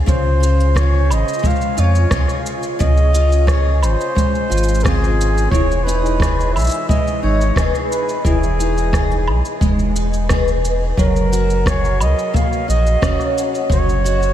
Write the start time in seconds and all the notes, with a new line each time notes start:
Already playing: G#3 F4 G#4
0.06 C#2 C#3 C5, kick, cabasa
0.40 F4, cabasa
0.60 cabasa
0.74 G#4 C#5, kick, cross-stick, cabasa
1.10 G#1 D#5, cabasa, low woodblock
1.28 cabasa
1.33 cabasa
1.39 G#3, cabasa
1.44 F5, kick, cabasa
1.50 cabasa
1.56 cabasa
1.61 cabasa
1.77 F2 F4 C#5, cabasa
1.95 cabasa
2.11 C#2 F4 G#4, kick, cross-stick, cabasa
2.28 cross-stick, cabasa
2.46 cabasa
2.63 cabasa
2.79 C#2 C#3 D#5, kick, cabasa
2.97 cabasa
3.13 F4, cabasa
3.32 cabasa
3.47 G#4 C#5, kick, cross-stick, cabasa
3.81 G#1 C5, cabasa, low woodblock
4.01 cabasa
4.15 G#3, kick, cabasa
4.35 cabasa
4.50 G#1 F4, cabasa
4.57 cabasa
4.63 cabasa
4.68 cabasa
4.74 cabasa
4.80 C4 G#4, cabasa
4.84 F4 G#4, kick, cross-stick, cabasa
5.04 cabasa
5.21 cabasa
5.38 cabasa
5.51 E1 E3 C#5, kick, cabasa
5.72 cabasa
5.84 D#4 B4
5.88 cabasa
6.06 cabasa
6.20 G#4, kick, cross-stick, cabasa
6.40 cabasa
6.53 B1 E5, cabasa, low woodblock
6.59 cabasa
6.61 cabasa
6.64 cabasa
6.67 cabasa
6.69 cabasa
6.71 cabasa
6.74 cabasa
6.88 G#3 D#5, kick, cabasa
7.07 cabasa
7.22 G#1 D#4 C#5
7.41 cabasa
7.56 E1 B3 D#4 G#4, kick, cross-stick, cabasa
7.74 cross-stick, cabasa
7.91 B4, cabasa
8.09 cabasa
8.25 E1 E3 G#4, kick, cabasa
8.43 cabasa
8.59 D#4, cabasa
8.78 cabasa
8.93 G#4, kick, cross-stick, cabasa
9.11 cabasa
9.28 B1, low woodblock
9.45 cabasa
9.61 E1 G#3, kick, cabasa
9.79 cabasa
9.96 D#4, cabasa
10.13 cabasa
10.29 B3 D#4 G#4, kick, cross-stick, cabasa
10.48 cabasa
10.65 cabasa
10.97 F#1 F#3 A#4, kick, cabasa
11.16 cabasa
11.32 F#4, cabasa
11.50 cabasa
11.66 G#4 C#5, kick, cross-stick, cabasa
11.85 cabasa
12.00 C#2 D#5, cabasa, low woodblock
12.19 cabasa
12.34 A#3 F5, kick, cabasa
12.53 cabasa
12.68 A#1 F#4 D#5, cabasa
12.87 cabasa
13.01 F#1 C#4 F#4 G#4, kick, cross-stick, cabasa
13.20 cross-stick, cabasa
13.38 cabasa
13.55 cabasa
13.70 F#1 F#3 C#5, kick, cabasa
13.89 cabasa
14.04 F#4, cabasa
14.23 cabasa